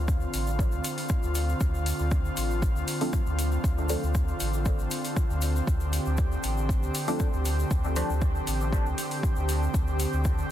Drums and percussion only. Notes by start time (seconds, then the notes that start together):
0.08 kick, shaker
0.21 shaker
0.34 open hi-hat, shaker
0.47 shaker
0.59 kick, shaker
0.72 shaker
0.84 open hi-hat, shaker
0.98 open hi-hat, shaker
1.09 kick, shaker
1.23 shaker
1.35 open hi-hat, shaker
1.49 shaker
1.60 kick, shaker
1.74 shaker
1.86 open hi-hat, shaker
1.99 shaker
2.11 kick, shaker
2.25 shaker
2.37 open hi-hat, shaker
2.50 shaker
2.62 kick, shaker
2.76 shaker
2.88 open hi-hat, shaker
3.01 open hi-hat, shaker
3.13 kick, shaker
3.26 shaker
3.39 open hi-hat, shaker
3.51 shaker
3.64 kick, shaker
3.78 shaker
3.89 open hi-hat, shaker
4.03 shaker
4.14 kick, shaker
4.28 shaker
4.40 open hi-hat, shaker
4.53 shaker
4.65 kick, shaker
4.79 shaker
4.91 open hi-hat, shaker
5.04 open hi-hat, shaker
5.16 kick, shaker
5.30 shaker
5.42 open hi-hat, shaker
5.56 shaker
5.67 kick, shaker
5.80 shaker
5.93 open hi-hat, shaker
6.06 shaker
6.17 kick, shaker
6.32 shaker
6.43 open hi-hat, shaker
6.57 shaker
6.69 kick, shaker
6.83 shaker
6.95 open hi-hat, shaker
7.08 open hi-hat, shaker
7.19 kick, shaker
7.33 shaker
7.45 open hi-hat, shaker
7.59 shaker
7.71 kick, shaker
7.84 shaker
7.96 open hi-hat, shaker
8.10 shaker
8.21 kick, shaker
8.35 shaker
8.47 open hi-hat, shaker
8.60 shaker
8.72 kick, shaker
8.86 shaker
8.98 open hi-hat, shaker
9.11 open hi-hat, shaker
9.23 kick, shaker
9.36 shaker
9.49 open hi-hat, shaker
9.63 shaker
9.74 kick, shaker
9.87 shaker
10.00 open hi-hat, shaker
10.13 shaker
10.24 kick, shaker
10.38 shaker